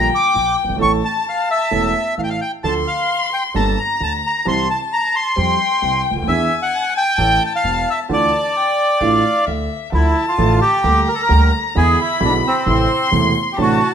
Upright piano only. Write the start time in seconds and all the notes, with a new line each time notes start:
0.34 A#1 A#2
0.64 F#1
0.69 G1
0.75 G#1 A1 A2 A3 C#4
0.79 E3 A4
1.71 E1 E2 E3 A3 C#4 A4
2.18 A1 A2
2.64 D2 D3 F3 A3 D4 A4
3.54 G1 G2 G3 A#3 D4 A4
4.00 D2 D3
4.45 C2 C3 E3 G3 C4 G4
5.36 F2 F3 G3 C4 G4
5.82 C2 C3
6.11 C#2
6.16 D2
6.22 D#2
6.27 E2 E3 B3 D4 G#4
7.18 A1 A2 E3 A3 C#4 A4
7.64 E1 E2
8.09 D2 D3 E3 A3 D4 F4
9.01 A1 A2 E3 A3 D4 F4
9.47 D2 D3
9.92 D2 D3 F3 A3 E4
10.38 A1 A2 D3 F3 A3 E4
10.84 D2 D3 G3 A#3 G4
11.29 D2 D3 G3 A#3 G4
11.75 E2 D3 E3 G#3 B3 E4
12.20 B1 B2 D3 G#3 B3 E4
12.66 A1 A2 C3 E3 A3 E4
13.11 E1 E2 C3 E3 A3 E4
13.58 A1 A2 C3 F#3 A3 D4